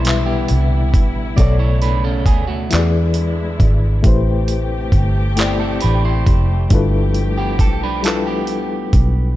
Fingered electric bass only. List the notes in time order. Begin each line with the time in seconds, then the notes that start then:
Already playing: B1
0.51 C2
0.95 A1
1.39 B1
2.27 D2
2.73 E2
3.61 G#1
4.05 A1
4.93 G1
5.84 A1
6.27 F1
6.72 G1
7.60 B1
8.94 B1